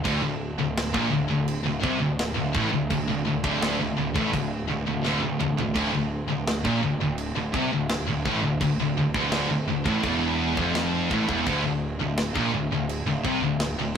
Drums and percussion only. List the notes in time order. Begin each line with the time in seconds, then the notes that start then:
0.05 kick, crash
0.77 snare, crash
0.94 kick
1.48 crash
1.84 kick
2.19 snare, crash
2.55 kick
2.90 kick, crash
3.44 kick
3.62 snare, crash
4.16 kick
4.34 kick, crash
5.05 snare
5.41 mid tom
5.58 floor tom
5.76 kick, crash
6.47 snare, crash
6.65 kick
7.18 crash
7.54 kick
7.89 snare, crash
8.26 kick
8.61 kick, crash
9.14 kick
9.32 snare, crash
9.86 kick
10.03 kick, crash
10.57 kick
10.75 snare, crash
11.11 kick
11.29 kick
11.46 kick, crash
12.18 snare, crash
12.36 kick
12.89 crash
13.25 kick
13.60 snare, crash